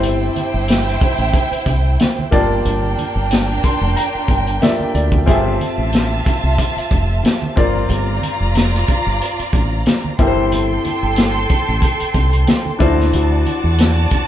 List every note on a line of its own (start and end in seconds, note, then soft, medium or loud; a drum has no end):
0.00 0.28 G1 loud
0.00 2.28 C4 medium
0.00 2.28 E4 medium
0.00 2.29 E4 loud
0.00 2.29 G4 medium
0.00 2.29 A4 medium
0.00 2.28 C5 medium
0.00 2.29 C5 medium
0.00 2.29 G5 loud
0.00 closed hi-hat medium
0.00 muted conga soft
0.00 low conga medium
0.36 closed hi-hat medium
0.36 high conga medium
0.54 0.96 G1 medium
0.68 snare loud
0.68 closed hi-hat medium
0.68 high conga soft
0.86 snare soft
0.86 muted conga soft
1.01 kick loud
1.01 open hi-hat soft
1.18 1.32 A1 medium
1.34 kick medium
1.34 closed hi-hat medium
1.34 muted conga soft
1.51 muted fingered electric bass stroke soft
1.51 closed hi-hat medium
1.66 1.96 C2 medium
1.66 kick medium
1.66 closed hi-hat medium
2.00 snare loud
2.00 closed hi-hat medium
2.00 muted conga soft
2.00 high conga medium
2.19 muted conga soft
2.19 high conga medium
2.31 2.61 G1 loud
2.31 4.57 A#3 medium
2.31 5.24 D4 loud
2.31 4.57 F4 medium
2.31 4.58 G4 medium
2.31 5.24 A#4 medium
2.31 4.58 D5 medium
2.31 5.24 G5 loud
2.31 4.58 A5 medium
2.31 kick loud
2.31 closed hi-hat medium
2.50 low conga medium
2.65 2.94 G1 loud
2.65 closed hi-hat medium
2.65 muted conga soft
2.65 low conga medium
2.83 muted conga soft
2.98 closed hi-hat medium
2.98 high conga medium
3.15 3.58 G1 loud
3.31 snare loud
3.31 closed hi-hat loud
3.31 muted conga soft
3.31 high conga soft
3.49 muted conga soft
3.64 3.94 C6 medium
3.64 muted fingered electric bass stroke soft
3.64 kick medium
3.64 closed hi-hat medium
3.81 3.95 F1 medium
3.96 4.27 A#5 medium
3.96 closed hi-hat loud
3.96 muted conga soft
4.15 muted fingered electric bass stroke soft
4.28 4.58 G1 medium
4.28 4.60 G5 medium
4.28 kick medium
4.28 closed hi-hat medium
4.47 closed hi-hat medium
4.62 5.27 A#3 medium
4.62 5.25 F4 medium
4.62 5.25 G4 soft
4.62 5.28 A4 soft
4.62 4.93 D5 medium
4.62 4.92 E5 medium
4.62 snare loud
4.62 closed hi-hat medium
4.62 muted conga soft
4.62 high conga medium
4.80 high conga medium
4.94 5.24 D2 loud
4.94 5.25 D5 medium
4.94 closed hi-hat medium
5.12 kick loud
5.12 low conga medium
5.26 5.57 G1 loud
5.26 7.52 C4 medium
5.26 7.52 F4 medium
5.26 7.53 F4 medium
5.26 7.53 G4 medium
5.26 5.34 G#4 medium
5.26 7.53 E5 medium
5.26 7.53 A5 medium
5.26 kick loud
5.26 closed hi-hat medium
5.26 low conga medium
5.34 7.56 A4 medium
5.44 muted conga soft
5.60 closed hi-hat medium
5.60 high conga medium
5.78 6.20 A1 medium
5.93 snare loud
5.93 closed hi-hat loud
5.93 high conga soft
6.26 kick loud
6.26 closed hi-hat medium
6.43 6.57 C2 medium
6.58 kick medium
6.58 closed hi-hat loud
6.58 muted conga soft
6.76 muted fingered electric bass stroke soft
6.76 closed hi-hat medium
6.76 muted conga soft
6.91 7.21 F1 medium
6.91 kick medium
6.91 closed hi-hat medium
7.24 snare loud
7.24 closed hi-hat medium
7.24 high conga medium
7.42 muted conga soft
7.42 high conga medium
7.56 7.86 G1 medium
7.56 10.14 C4 medium
7.56 10.15 F4 medium
7.56 10.15 A#4 medium
7.56 10.15 D5 medium
7.56 10.15 A#5 loud
7.56 kick loud
7.56 closed hi-hat medium
7.74 low conga medium
7.89 8.18 G1 loud
7.89 closed hi-hat medium
7.89 muted conga soft
7.89 low conga medium
8.08 muted conga soft
8.22 closed hi-hat medium
8.22 high conga medium
8.40 8.83 F1 medium
8.55 snare loud
8.55 closed hi-hat loud
8.55 muted conga soft
8.55 high conga soft
8.72 snare soft
8.72 muted conga soft
8.88 kick medium
8.88 closed hi-hat medium
9.06 9.19 G1 medium
9.21 closed hi-hat medium
9.39 muted fingered electric bass stroke soft
9.39 closed hi-hat medium
9.53 9.82 A1 medium
9.53 kick medium
9.53 closed hi-hat medium
9.86 snare loud
9.86 closed hi-hat medium
9.86 high conga medium
10.05 muted conga soft
10.05 high conga medium
10.18 10.77 G1 loud
10.18 12.77 C4 medium
10.18 12.77 E4 medium
10.18 12.77 G4 medium
10.18 12.76 A4 medium
10.18 12.77 A4 medium
10.18 10.27 A#4 medium
10.18 12.76 G5 medium
10.18 12.76 C6 loud
10.18 kick loud
10.18 closed hi-hat medium
10.27 12.79 C5 medium
10.37 low conga medium
10.52 closed hi-hat medium
10.52 muted conga soft
10.52 low conga medium
10.70 muted conga soft
10.85 closed hi-hat medium
10.85 high conga medium
11.03 11.45 G1 medium
11.16 snare loud
11.16 closed hi-hat loud
11.16 high conga soft
11.35 muted conga soft
11.49 kick loud
11.49 closed hi-hat medium
11.68 11.81 A1 loud
11.82 kick loud
11.82 closed hi-hat medium
11.82 muted conga soft
12.00 muted fingered electric bass stroke soft
12.00 closed hi-hat medium
12.14 12.44 C2 medium
12.14 kick medium
12.14 closed hi-hat medium
12.33 closed hi-hat medium
12.47 snare loud
12.47 closed hi-hat medium
12.47 muted conga soft
12.47 high conga medium
12.66 high conga medium
12.79 13.10 D2 loud
12.79 14.28 D4 medium
12.79 14.28 E4 medium
12.79 12.87 F4 medium
12.79 14.28 F#4 medium
12.79 14.28 A4 medium
12.79 14.28 C5 medium
12.79 14.28 D5 medium
12.79 14.28 A5 loud
12.79 kick loud
12.79 closed hi-hat medium
12.86 14.28 F#4 medium
12.97 snare soft
12.97 low conga medium
13.13 13.43 D2 loud
13.13 closed hi-hat medium
13.13 low conga medium
13.30 muted conga soft
13.46 closed hi-hat medium
13.46 high conga medium
13.64 14.06 E2 medium
13.78 snare loud
13.78 closed hi-hat loud
13.78 muted conga soft
13.78 high conga medium
14.11 muted fingered electric bass stroke soft
14.11 kick medium
14.11 closed hi-hat medium